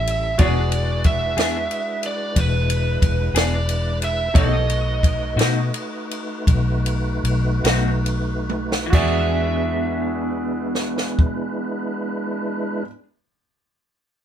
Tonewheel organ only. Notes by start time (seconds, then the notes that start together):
Already playing: G3 C#4 E4 A4
0.39 G#3 D4 E4 B4
4.33 E3 A#3 G4 A4
4.67 A3 D#4 F#4 B4
8.92 G#3 D4 E4 B4